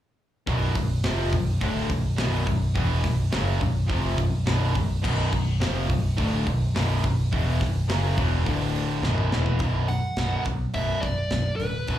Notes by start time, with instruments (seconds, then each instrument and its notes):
0.47 picked electric bass B0, overdriven electric guitar B1 F#2 B2, kick, open hi-hat
0.75 picked electric bass B0, overdriven electric guitar B1 F#2, kick, open hi-hat
1.04 picked electric bass F1, overdriven electric guitar F2 C3 F3, snare, open hi-hat
1.32 picked electric bass B0, overdriven electric guitar B1 F#2, kick, open hi-hat
1.61 picked electric bass D1, overdriven electric guitar D2 A2 D3, kick, open hi-hat
1.90 picked electric bass B0, overdriven electric guitar B1 F#2, kick, open hi-hat
2.18 picked electric bass B0, overdriven electric guitar B1 F#2 B2, snare, open hi-hat
2.47 picked electric bass B0, overdriven electric guitar B1 F#2, kick, open hi-hat
2.76 picked electric bass E1, overdriven electric guitar E2 B2 E3, kick, open hi-hat
3.04 picked electric bass B0, overdriven electric guitar B1 F#2, kick, snare, open hi-hat
3.32 picked electric bass F#1, overdriven electric guitar F#2 C#3 F#3, snare, open hi-hat
3.61 picked electric bass B0, overdriven electric guitar B1 F#2, kick, open hi-hat
3.89 picked electric bass F1, overdriven electric guitar F2 C3 F3, kick, open hi-hat
4.18 picked electric bass B0, overdriven electric guitar B1 F#2, kick, open hi-hat
4.46 picked electric bass B0, overdriven electric guitar B1 F#2 B2, snare, open hi-hat
4.75 picked electric bass B0, overdriven electric guitar B1 F#2, kick, open hi-hat
5.04 picked electric bass B0, overdriven electric guitar B1 F#2 B2, kick, crash
5.33 picked electric bass B0, overdriven electric guitar B1 F#2, kick, open hi-hat
5.60 picked electric bass F1, overdriven electric guitar F2 C3 F3, snare, open hi-hat
5.89 picked electric bass B0, overdriven electric guitar B1 F#2, kick, open hi-hat
6.17 picked electric bass D1, overdriven electric guitar D2 A2 D3, kick, open hi-hat
6.47 picked electric bass B0, overdriven electric guitar B1 F#2, kick, open hi-hat
6.75 picked electric bass B0, overdriven electric guitar B1 F#2 B2, snare, open hi-hat
7.03 picked electric bass B0, overdriven electric guitar B1 F#2, kick, open hi-hat
7.32 picked electric bass E1, overdriven electric guitar E2 B2 E3, kick, open hi-hat
7.59 picked electric bass B0, overdriven electric guitar B1 F#2, kick, snare, open hi-hat
7.88 picked electric bass F#1, overdriven electric guitar F#2 C#3 F#3, snare, open hi-hat
8.17 picked electric bass E1, overdriven electric guitar E2 B2 E3, kick, open hi-hat
8.45 picked electric bass D1, overdriven electric guitar D2 A2 D3, kick, open hi-hat
8.75 open hi-hat
9.02 picked electric bass B0, overdriven electric guitar B1 F#2 B2, snare
9.18 mid tom
9.31 picked electric bass E1, overdriven electric guitar E2 B2 E3, snare
9.46 floor tom
9.58 picked electric bass B0, overdriven electric guitar B1 F#2 B2, kick, open hi-hat
9.88 overdriven electric guitar B1 F#2, lead electric guitar F#5, open hi-hat
10.17 picked electric bass B0, overdriven electric guitar B1 F#2 B2, snare, open hi-hat
10.45 picked electric bass B1, overdriven electric guitar B1 F#2, kick, open hi-hat
10.74 picked electric bass B0, overdriven electric guitar B1 F#2 B2, lead electric guitar E5, kick, open hi-hat
11.01 picked electric bass B0, overdriven electric guitar B1 F#2, lead electric guitar D5, kick, open hi-hat
11.30 picked electric bass B0, overdriven electric guitar B1 F#2, snare, open hi-hat
11.56 picked electric bass D1, overdriven electric guitar B1 F#2, lead electric guitar B4, open hi-hat
11.87 picked electric bass B0, overdriven electric guitar B1 F#2 B2, kick, open hi-hat